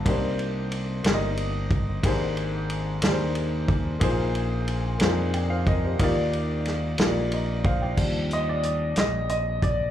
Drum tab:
CC |------|------|------|------|
RD |xxxxxx|xxxxxx|xxxxxx|xxxxxx|
HH |------|------|------|------|
SD |---o--|---o--|---o--|--oo--|
BD |o----o|o----o|o----o|o----o|

CC |x-----|
RD |------|
HH |-xxxxx|
SD |---o--|
BD |o----o|